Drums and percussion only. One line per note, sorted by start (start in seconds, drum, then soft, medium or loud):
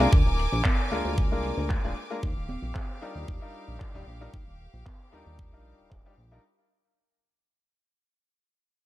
0.00 closed hi-hat medium
0.12 kick loud
0.12 closed hi-hat medium
0.39 open hi-hat medium
0.53 closed hi-hat medium
0.65 kick loud
0.65 clap loud
0.65 closed hi-hat medium
0.65 high conga medium
0.92 open hi-hat loud
1.05 closed hi-hat medium
1.18 kick loud
1.18 closed hi-hat medium
1.43 open hi-hat medium
1.58 closed hi-hat medium
1.70 kick loud
1.70 clap medium
1.70 closed hi-hat medium
1.96 open hi-hat medium
2.11 closed hi-hat medium
2.23 kick loud
2.23 closed hi-hat medium
2.49 open hi-hat medium
2.49 high conga medium
2.63 closed hi-hat medium
2.75 kick loud
2.75 clap loud
2.75 closed hi-hat medium
2.75 high conga medium
3.02 open hi-hat loud
3.16 closed hi-hat medium
3.28 kick loud
3.28 closed hi-hat medium
3.54 open hi-hat medium
3.69 closed hi-hat medium
3.80 kick loud
3.80 clap medium
3.80 closed hi-hat medium
4.07 open hi-hat medium
4.21 closed hi-hat medium
4.34 kick loud
4.34 closed hi-hat medium
4.60 open hi-hat medium
4.73 closed hi-hat medium
4.86 kick loud
4.86 clap loud
4.86 closed hi-hat medium
4.86 high conga medium
5.00 closed hi-hat medium
5.13 open hi-hat loud
5.26 closed hi-hat medium
5.39 kick loud
5.39 closed hi-hat medium
5.53 closed hi-hat medium
5.65 open hi-hat loud
5.79 closed hi-hat medium
5.91 kick loud
5.91 clap medium
5.91 closed hi-hat medium
6.05 closed hi-hat soft
6.19 open hi-hat medium
6.32 closed hi-hat medium